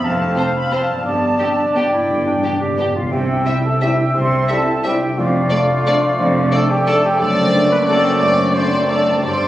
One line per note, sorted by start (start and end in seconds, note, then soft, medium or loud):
0.00 0.99 F2 medium
0.00 1.01 C4 soft
0.00 1.03 F4 soft
0.00 1.05 C5 soft
0.04 0.32 F1 medium
0.04 0.32 F2 medium
0.04 1.04 C4 medium
0.04 1.05 F5 medium
0.04 0.37 A5 medium
0.36 0.45 C4 soft
0.36 0.44 F4 soft
0.36 0.46 C5 medium
0.36 0.44 A5 medium
0.56 0.73 B5 medium
0.71 0.79 C4 medium
0.71 0.79 F4 soft
0.71 0.80 C5 medium
0.71 1.05 A5 medium
0.88 3.04 G2 medium
0.92 3.06 B3 soft
0.97 3.09 D4 soft
1.01 3.45 G4 soft
1.06 1.35 G1 medium
1.06 1.12 G2 soft
1.06 1.35 G2 medium
1.06 1.37 B3 medium
1.06 2.91 D5 medium
1.06 1.75 A5 medium
1.14 1.19 G2 soft
1.28 1.34 G2 soft
1.36 1.42 G2 soft
1.36 1.47 B3 soft
1.36 1.47 D4 soft
1.36 1.47 G4 soft
1.41 1.50 G2 soft
1.41 1.60 C4 medium
1.51 1.57 G2 soft
1.58 1.65 G2 soft
1.58 1.93 D4 soft
1.66 1.73 G2 soft
1.74 1.81 G2 soft
1.74 1.82 B3 soft
1.74 1.85 D4 soft
1.74 1.84 G4 medium
1.74 2.68 G5 medium
1.82 1.88 G2 soft
1.89 1.95 G2 soft
1.94 2.03 G2 soft
1.94 2.25 E4 medium
2.04 2.09 G2 soft
2.10 2.37 G1 medium
2.10 2.37 G2 medium
2.10 2.16 G2 soft
2.17 2.23 G2 medium
2.24 2.31 G2 medium
2.24 2.60 D4 medium
2.32 2.38 G2 medium
2.40 2.46 G2 medium
2.40 2.50 B3 soft
2.44 2.53 G2 medium
2.44 2.52 D4 soft
2.44 2.52 G4 soft
2.55 2.62 G2 medium
2.61 2.69 G2 medium
2.61 2.94 G4 medium
2.70 2.76 G2 medium
2.77 2.84 G2 medium
2.77 2.85 B3 soft
2.77 2.86 D4 soft
2.77 2.86 G4 soft
2.85 2.91 G2 medium
2.92 2.99 G2 medium
2.92 3.11 F4 soft
2.92 3.14 F4 medium
2.92 3.10 F5 medium
3.00 3.07 G2 medium
3.12 3.40 C2 medium
3.12 4.13 C3 medium
3.12 3.40 C3 medium
3.12 5.20 C4 medium
3.12 3.64 G4 medium
3.12 5.14 E5 medium
3.12 3.65 G5 medium
3.28 3.62 E4 soft
3.45 3.53 G3 soft
3.45 3.60 G3 medium
3.45 3.53 C4 soft
3.45 3.60 E4 soft
3.45 4.47 G4 soft
3.45 3.54 E5 soft
3.63 3.97 E4 soft
3.63 3.83 A4 medium
3.63 3.82 A5 medium
3.81 3.89 G3 soft
3.81 3.93 G3 medium
3.81 3.90 C4 medium
3.81 4.10 D4 soft
3.81 3.94 E4 medium
3.81 4.17 G4 medium
3.81 3.89 E5 medium
3.81 4.16 G5 medium
3.98 4.67 E4 soft
4.15 4.43 C2 medium
4.15 5.19 C3 medium
4.15 4.44 C3 medium
4.15 4.48 C5 medium
4.15 4.48 C6 medium
4.31 5.19 C4 soft
4.48 4.57 G3 soft
4.48 4.63 G3 medium
4.48 4.57 C4 soft
4.48 4.62 E4 medium
4.48 5.19 G4 soft
4.48 4.87 A4 medium
4.48 4.56 E5 medium
4.48 4.85 A5 medium
4.68 5.02 E4 medium
4.84 4.93 G3 medium
4.84 4.98 G3 medium
4.84 4.92 C4 medium
4.84 5.14 D4 soft
4.84 4.97 E4 medium
4.84 5.20 G4 medium
4.84 4.92 E5 medium
4.84 5.19 G5 medium
5.03 5.20 E4 soft
5.18 5.46 F1 medium
5.18 6.18 F2 medium
5.18 5.47 F2 medium
5.18 7.03 A3 medium
5.18 6.52 F4 medium
5.18 7.16 D5 medium
5.18 6.50 F5 medium
5.35 5.69 D4 medium
5.50 5.59 A3 medium
5.50 5.65 A3 medium
5.50 5.60 D4 medium
5.50 5.65 D4 medium
5.50 6.52 A4 medium
5.50 5.58 D5 medium
5.70 6.03 D4 medium
5.86 5.94 A3 medium
5.86 5.99 A3 medium
5.86 6.15 C4 soft
5.86 5.98 D4 medium
5.86 5.95 D4 medium
5.86 5.94 D5 medium
6.05 6.69 D4 medium
6.19 6.47 F1 medium
6.19 7.21 F2 medium
6.19 6.48 F2 medium
6.36 8.35 A3 medium
6.52 6.60 A3 medium
6.52 6.66 A3 medium
6.52 6.60 D4 medium
6.52 6.67 D4 medium
6.52 9.24 A4 medium
6.52 6.72 A4 loud
6.52 6.60 D5 medium
6.52 6.70 A5 medium
6.70 7.03 D4 medium
6.70 6.86 G4 loud
6.70 6.87 G5 medium
6.86 6.94 A3 medium
6.86 6.99 A3 medium
6.86 7.15 C4 medium
6.86 7.00 D4 medium
6.86 6.97 D4 medium
6.86 7.03 A4 loud
6.86 6.95 D5 medium
6.86 7.04 A5 medium
7.04 7.35 D4 medium
7.04 7.21 G4 loud
7.04 7.21 G5 medium
7.19 9.19 F#1 medium
7.19 8.18 F#2 medium
7.19 9.19 F#2 medium
7.19 7.83 A3 medium
7.19 9.19 A3 medium
7.19 7.84 C4 medium
7.19 7.70 A4 loud
7.19 7.83 D5 medium
7.19 9.19 D5 medium
7.19 7.71 A5 medium
7.36 7.70 D4 medium
7.52 7.66 A3 medium
7.52 7.66 D4 medium
7.52 8.53 C5 medium
7.71 8.04 D4 medium
7.71 7.78 B4 loud
7.71 7.88 B5 medium
7.86 8.18 A3 medium
7.86 8.00 A3 medium
7.86 8.15 C4 soft
7.86 8.19 C4 medium
7.86 8.00 D4 medium
7.86 8.20 A4 loud
7.86 8.17 D5 medium
7.86 8.20 A5 medium
8.05 8.70 D4 medium
8.18 9.24 F#2 medium
8.18 8.52 A3 medium
8.18 8.53 C4 medium
8.18 8.51 D5 medium
8.18 8.56 D5 loud
8.18 8.54 D6 medium
8.36 9.24 A3 medium
8.52 8.88 A3 medium
8.52 8.89 C4 medium
8.52 9.24 C5 medium
8.52 8.91 C5 medium
8.52 8.87 D5 medium
8.52 8.90 C6 medium
8.56 8.69 A3 medium
8.56 8.69 D4 medium
8.72 9.06 D4 soft
8.89 9.22 A3 medium
8.89 9.02 A3 medium
8.89 9.18 C4 soft
8.89 9.23 C4 medium
8.89 9.02 D4 medium
8.89 9.25 A4 medium
8.89 9.20 D5 medium
8.89 9.23 A5 medium
9.07 9.39 D4 soft
9.22 9.48 G1 medium
9.22 9.48 G2 medium
9.22 9.48 G3 medium
9.22 9.48 D4 medium
9.22 9.48 C5 medium
9.22 9.48 D5 medium
9.22 9.48 C6 medium
9.40 9.48 D4 soft